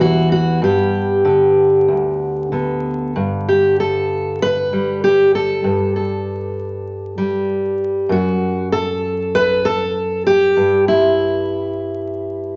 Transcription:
Already playing: E2 G3 B3
0.00 E3 F#4
0.32 F#4
0.62 G2 G4
1.25 D3
1.88 D2
2.52 D3 B3
3.16 G2
3.49 G4
3.80 A4
4.42 B4
4.73 G3
5.04 G4
5.35 A4
5.64 G2
5.96 A4
7.18 G3
8.09 F#2 F#4
8.72 A4
9.35 B4
9.65 A4
10.27 G4
10.57 G2
10.88 E4

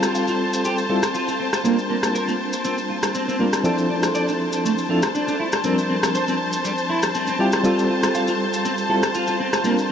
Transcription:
Already playing: G3 C4 F4 A4 C5 A5
0.03 cross-stick, maracas
0.15 F5, maracas
0.28 F4, maracas
0.53 maracas
0.65 G4, maracas
0.78 maracas
0.89 G3 C4 E4 F4 A4
1.03 cross-stick, maracas
1.15 F4, maracas
1.28 F4, maracas
1.40 C4
1.53 cross-stick, maracas
1.64 G3 A#3 C4 D4 F4 A#4, maracas
1.79 maracas
1.90 A#3
2.03 cross-stick, maracas
2.15 A#4, maracas
2.28 A#3, maracas
2.53 maracas
2.65 C4, maracas
2.78 maracas
2.90 F4
3.03 cross-stick, maracas
3.15 C4, maracas
3.28 C4, maracas
3.39 G3 A#3 C4 D4 F4 A#4
3.53 cross-stick, maracas
3.64 F3 C4 D4 E4 A4 C5 A5, maracas
3.78 maracas
3.90 D4
4.03 cross-stick, maracas
4.15 D5, maracas
4.28 D4, maracas
4.53 maracas
4.65 A3, maracas
4.78 maracas
4.89 F3 C4 D4 E4 F4 A4
5.03 cross-stick, maracas
5.15 D4, maracas
5.28 D4, maracas
5.40 E4
5.52 cross-stick, maracas
5.64 F3 G3 C4 D4 A#4, maracas
5.78 maracas
5.90 C4
6.03 cross-stick, maracas
6.15 C5, maracas
6.28 C4, maracas
6.53 maracas
6.65 G3, maracas
6.78 maracas
6.90 E4
7.03 cross-stick, maracas
7.15 C4, maracas
7.27 C4, maracas
7.39 G3 C4 E4 F4 G4
7.52 cross-stick, maracas
7.64 G3 C4 F4 A4, maracas
7.79 maracas
7.90 F4
8.03 cross-stick, maracas
8.15 F5, maracas
8.27 F4, maracas
8.53 maracas
8.65 C4, maracas
8.78 maracas
8.89 G3 C4 E4 F4 A4
9.03 cross-stick, maracas
9.15 F4, maracas
9.27 F4, maracas
9.40 C4
9.53 cross-stick, maracas
9.64 G3 A#3 C4 D4 F4 A#4, maracas
9.78 maracas

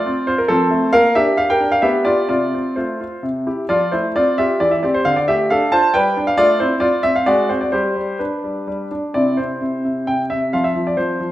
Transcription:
Already playing: F4 D5
0.06 C4
0.27 F4 C5
0.38 A#4
0.48 F3 C4 A4
0.71 A3
0.93 A#3 A#4 F5
1.15 D4 G4 E5
1.37 G4 F5
1.50 A#4 G5
1.60 D4
1.72 F5
1.82 B3 G4 E5
2.05 F4 G4 D5
2.29 C3 F4 D5
2.54 C4
2.76 A3 F4 C5
3.01 F4
3.23 C3
3.47 E4 G4
3.69 F3 F4 D5
3.92 A3 E4 C5
4.16 C4 F4 D5
4.38 F4 G4 E5
4.60 E3 D5
4.71 E5
4.83 C4 G4 D5
4.94 C5
5.05 D3 F5
5.16 D5
5.28 A3 G4 E5
5.50 D4 A4 F5
5.72 F4 C5 A5
5.94 G3 B4 G5
6.17 D4
6.27 F5
6.38 A3 F4 D5
6.60 C4 E4 C5
6.80 F4 D5
7.03 C4 E5
7.16 F5
7.26 G#3 F#4 D5
7.49 C4 F#4 C5
7.61 D5
7.72 G3 G4 C5
7.96 G3
8.19 D4 B4
8.44 G3
8.67 G3
8.91 D4
9.14 C3 C4 E4 D5
9.37 C3 C5
9.61 C3
9.85 C3
10.07 C3 G5
10.30 C3 E5
10.53 F3 C4 F4 F5
10.64 E5
10.75 F3
10.87 D5
10.97 F3 C5
11.20 F3

